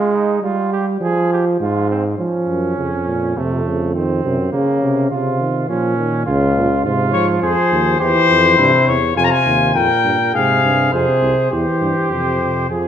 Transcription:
0.00 0.42 G#3 medium
0.00 0.17 F4 medium
0.15 0.43 D#4 medium
0.42 1.00 G3 medium
0.42 0.72 F4 medium
0.73 0.86 G4 medium
1.01 1.59 F3 medium
1.01 1.31 G#4 medium
1.33 1.45 G4 medium
1.60 2.18 G#2 medium
1.60 1.90 F4 medium
1.91 2.04 C4 medium
2.19 2.74 F3 medium
2.19 3.39 C#4 medium
2.49 2.76 F#2 medium
2.77 3.36 F2 medium
2.77 2.90 C#3 soft
3.07 3.36 A#2 medium
3.37 4.23 F2 medium
3.37 3.65 C3 medium
3.37 3.94 A3 medium
3.65 3.97 C#3 medium
3.95 4.23 D#3 medium
3.95 4.52 C4 medium
4.24 4.52 F#2 medium
4.24 4.37 C3 medium
4.53 5.10 C#3 medium
4.53 4.81 C#3 medium
4.53 5.10 A#3 medium
4.82 5.10 C3 medium
5.11 5.68 C3 medium
5.11 5.42 C#3 medium
5.11 5.68 F4 medium
5.40 5.71 D#3 medium
5.69 6.25 A#2 medium
5.69 5.97 F3 medium
5.69 6.26 C#4 medium
5.97 6.26 D#3 medium
6.26 6.86 C#2 medium
6.26 6.55 C#3 medium
6.26 6.83 F4 medium
6.56 6.69 A#2 medium
6.84 7.41 G#2 medium
6.84 7.15 C3 medium
6.84 7.41 F4 medium
7.13 8.00 F3 medium
7.13 7.26 C#5 medium
7.41 7.55 F2 medium
7.41 7.99 G#4 medium
7.41 7.99 C5 medium
7.71 8.00 D#2 medium
8.00 8.13 E2 medium
8.00 8.58 E3 medium
8.00 8.56 G4 medium
8.00 8.89 C5 loud
8.29 8.58 F2 medium
8.57 8.71 G2 medium
8.57 8.96 C3 medium
8.57 8.95 E4 medium
8.87 9.15 E2 medium
8.87 9.17 C#5 medium
9.14 9.29 F2 medium
9.14 9.71 C3 medium
9.14 9.70 F4 medium
9.14 9.26 G#5 loud
9.24 9.33 A#5 medium
9.32 9.75 G#5 loud
9.46 9.75 D#2 medium
9.75 9.88 F2 medium
9.75 10.33 A#2 medium
9.75 10.35 A#4 medium
9.75 10.33 G5 medium
10.05 10.18 G2 medium
10.34 10.63 G#2 medium
10.34 10.92 C3 medium
10.34 10.94 G#4 medium
10.34 10.93 F5 medium
10.63 10.92 G2 medium
10.92 11.06 F2 medium
10.92 11.51 C3 medium
10.92 11.51 G#4 medium
10.92 11.51 C5 medium
11.22 11.35 C2 medium
11.52 11.65 E2 medium
11.52 12.07 E3 medium
11.52 12.66 G4 medium
11.52 12.07 C5 medium
11.81 11.95 G2 medium
12.10 12.69 F2 medium
12.10 12.40 C3 soft
12.10 12.69 C5 medium
12.41 12.69 C3 medium
12.69 12.88 F2 medium
12.69 12.88 F3 medium
12.69 12.88 G#4 medium

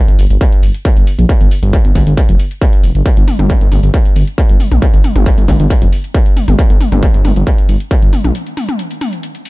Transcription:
0.08 0.15 G1 medium
0.08 closed hi-hat medium
0.19 0.26 G1 medium
0.19 open hi-hat loud
0.30 0.37 G1 medium
0.30 closed hi-hat medium
0.41 kick loud
0.41 closed hi-hat medium
0.52 closed hi-hat medium
0.63 0.70 G1 medium
0.63 open hi-hat loud
0.74 closed hi-hat soft
0.85 kick loud
0.85 closed hi-hat medium
0.97 1.03 G1 medium
0.97 closed hi-hat medium
1.07 open hi-hat loud
1.19 1.25 A#1 medium
1.19 closed hi-hat medium
1.29 kick loud
1.29 closed hi-hat medium
1.41 1.47 G1 medium
1.41 closed hi-hat medium
1.51 open hi-hat loud
1.63 1.76 G1 loud
1.63 closed hi-hat soft
1.73 kick loud
1.73 closed hi-hat medium
1.85 1.91 G1 loud
1.85 closed hi-hat medium
1.95 2.02 G1 medium
1.95 kick medium
1.95 open hi-hat loud
2.07 2.13 G1 medium
2.07 closed hi-hat medium
2.17 kick loud
2.17 closed hi-hat medium
2.29 2.36 F1 medium
2.29 closed hi-hat soft
2.40 open hi-hat loud
2.51 closed hi-hat soft
2.62 kick loud
2.62 closed hi-hat medium
2.73 closed hi-hat soft
2.84 2.91 F1 loud
2.84 open hi-hat loud
2.95 3.02 G1 medium
2.95 closed hi-hat medium
3.06 kick loud
3.06 closed hi-hat medium
3.17 3.24 G1 loud
3.17 closed hi-hat soft
3.28 open hi-hat loud
3.28 mid tom medium
3.39 3.53 G1 medium
3.39 closed hi-hat medium
3.39 mid tom medium
3.50 kick loud
3.50 closed hi-hat medium
3.61 3.68 G1 medium
3.61 closed hi-hat medium
3.72 3.79 G1 loud
3.72 open hi-hat loud
3.72 mid tom medium
3.83 3.90 G1 medium
3.83 closed hi-hat soft
3.94 kick loud
3.94 closed hi-hat medium
4.05 closed hi-hat soft
4.16 4.23 G1 medium
4.16 open hi-hat loud
4.27 closed hi-hat soft
4.38 kick loud
4.38 closed hi-hat medium
4.49 4.56 G1 medium
4.49 closed hi-hat soft
4.60 open hi-hat loud
4.60 mid tom medium
4.72 4.78 A#1 loud
4.72 closed hi-hat medium
4.72 mid tom loud
4.82 kick loud
4.82 closed hi-hat medium
4.94 5.00 G1 loud
4.94 closed hi-hat soft
5.04 open hi-hat loud
5.04 mid tom medium
5.16 5.29 G1 medium
5.16 closed hi-hat soft
5.16 mid tom loud
5.26 kick loud
5.26 closed hi-hat medium
5.38 5.44 G1 medium
5.38 closed hi-hat medium
5.48 5.55 G1 medium
5.48 kick medium
5.48 open hi-hat loud
5.48 mid tom loud
5.60 5.66 G1 loud
5.60 closed hi-hat medium
5.70 kick loud
5.70 closed hi-hat medium
5.82 5.88 F1 medium
5.82 closed hi-hat medium
5.93 open hi-hat medium
6.04 closed hi-hat soft
6.15 kick loud
6.15 closed hi-hat medium
6.26 closed hi-hat soft
6.37 open hi-hat loud
6.37 mid tom medium
6.48 6.55 G1 loud
6.48 closed hi-hat medium
6.48 mid tom medium
6.59 kick loud
6.59 closed hi-hat medium
6.70 6.77 G1 loud
6.70 closed hi-hat soft
6.81 open hi-hat loud
6.81 mid tom medium
6.92 7.05 G1 medium
6.92 closed hi-hat medium
6.92 mid tom loud
7.03 kick loud
7.03 closed hi-hat medium
7.14 7.21 G1 loud
7.14 closed hi-hat medium
7.25 7.32 G1 medium
7.25 open hi-hat medium
7.25 mid tom loud
7.36 7.43 G1 medium
7.36 closed hi-hat medium
7.47 kick loud
7.47 closed hi-hat medium
7.58 closed hi-hat medium
7.69 7.76 G1 medium
7.69 open hi-hat medium
7.80 closed hi-hat soft
7.91 kick loud
7.91 closed hi-hat medium
8.02 8.09 G1 medium
8.02 closed hi-hat soft
8.13 open hi-hat loud
8.13 mid tom medium
8.24 8.31 A#1 loud
8.24 closed hi-hat soft
8.24 mid tom medium
8.35 closed hi-hat medium
8.47 closed hi-hat soft
8.57 open hi-hat medium
8.57 mid tom medium
8.69 closed hi-hat medium
8.69 mid tom medium
8.79 closed hi-hat medium
8.91 closed hi-hat medium
9.01 open hi-hat loud
9.01 mid tom medium
9.13 closed hi-hat medium
9.23 closed hi-hat medium
9.35 closed hi-hat medium
9.45 open hi-hat medium

